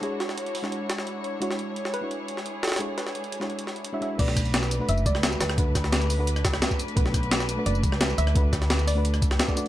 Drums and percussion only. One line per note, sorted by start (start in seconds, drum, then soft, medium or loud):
0.03 closed hi-hat medium
0.20 snare soft
0.20 closed hi-hat medium
0.29 snare soft
0.38 closed hi-hat medium
0.46 closed hi-hat soft
0.55 open hi-hat medium
0.64 snare soft
0.72 closed hi-hat medium
0.90 snare medium
0.90 closed hi-hat medium
0.98 snare medium
1.07 closed hi-hat medium
1.24 closed hi-hat medium
1.42 closed hi-hat medium
1.51 snare soft
1.59 closed hi-hat medium
1.76 closed hi-hat medium
1.85 snare soft
1.94 closed hi-hat medium
2.11 closed hi-hat medium
2.28 closed hi-hat medium
2.37 snare soft
2.46 closed hi-hat medium
2.63 snare medium
2.63 closed hi-hat medium
2.68 snare medium
2.68 closed hi-hat medium
2.72 snare medium
2.72 closed hi-hat medium
2.76 snare medium
2.76 closed hi-hat medium
2.80 closed hi-hat medium
2.98 snare soft
2.98 closed hi-hat medium
3.07 snare soft
3.15 closed hi-hat medium
3.24 closed hi-hat soft
3.32 closed hi-hat medium
3.41 snare soft
3.50 closed hi-hat medium
3.59 closed hi-hat medium
3.67 snare soft
3.76 closed hi-hat medium
3.84 closed hi-hat medium
4.02 closed hi-hat medium
4.19 kick loud
4.19 closed hi-hat medium
4.19 crash loud
4.28 snare soft
4.36 kick medium
4.36 cross-stick soft
4.36 closed hi-hat medium
4.36 tambourine medium
4.45 closed hi-hat soft
4.54 snare loud
4.54 closed hi-hat medium
4.54 closed hi-hat loud
4.63 snare soft
4.63 tambourine soft
4.71 closed hi-hat medium
4.71 tambourine medium
4.89 closed hi-hat medium
4.97 tambourine soft
5.06 kick loud
5.06 closed hi-hat medium
5.06 tambourine medium
5.15 cross-stick soft
5.15 snare soft
5.23 snare loud
5.23 closed hi-hat medium
5.23 closed hi-hat loud
5.32 tambourine soft
5.41 snare loud
5.41 closed hi-hat medium
5.41 tambourine medium
5.49 cross-stick medium
5.49 snare soft
5.49 closed hi-hat soft
5.58 kick loud
5.58 closed hi-hat medium
5.58 closed hi-hat loud
5.75 kick medium
5.75 cross-stick soft
5.75 snare soft
5.75 closed hi-hat medium
5.75 tambourine medium
5.84 snare soft
5.84 closed hi-hat soft
5.93 snare loud
5.93 closed hi-hat medium
6.01 closed hi-hat soft
6.01 tambourine soft
6.10 closed hi-hat medium
6.10 open hi-hat medium
6.10 tambourine medium
6.27 closed hi-hat medium
6.36 cross-stick soft
6.36 tambourine soft
6.45 kick loud
6.45 snare loud
6.45 closed hi-hat medium
6.45 tambourine medium
6.53 cross-stick medium
6.53 snare medium
6.62 snare loud
6.62 closed hi-hat medium
6.71 kick medium
6.71 tambourine soft
6.79 closed hi-hat medium
6.79 tambourine medium
6.88 closed hi-hat soft
6.97 kick loud
6.97 closed hi-hat medium
7.06 snare soft
7.14 kick medium
7.14 cross-stick soft
7.14 closed hi-hat medium
7.14 tambourine medium
7.23 closed hi-hat soft
7.31 snare loud
7.31 closed hi-hat medium
7.40 snare medium
7.40 tambourine soft
7.49 closed hi-hat medium
7.49 tambourine medium
7.66 closed hi-hat medium
7.75 tambourine soft
7.83 kick loud
7.83 closed hi-hat medium
7.83 tambourine medium
7.92 cross-stick soft
7.92 snare soft
8.01 snare loud
8.01 closed hi-hat medium
8.10 tambourine soft
8.18 closed hi-hat medium
8.18 tambourine medium
8.27 cross-stick medium
8.27 closed hi-hat soft
8.35 kick loud
8.35 closed hi-hat medium
8.53 kick medium
8.53 cross-stick soft
8.53 snare soft
8.53 closed hi-hat medium
8.53 tambourine medium
8.62 snare soft
8.62 closed hi-hat soft
8.70 snare loud
8.70 closed hi-hat medium
8.79 closed hi-hat soft
8.79 tambourine soft
8.88 closed hi-hat medium
8.88 open hi-hat medium
8.88 tambourine medium
9.05 closed hi-hat medium
9.14 cross-stick soft
9.14 tambourine soft
9.22 kick loud
9.22 closed hi-hat medium
9.22 tambourine medium
9.31 cross-stick soft
9.31 snare medium
9.39 snare loud
9.39 closed hi-hat medium
9.48 kick medium
9.48 tambourine soft
9.57 closed hi-hat medium
9.57 tambourine medium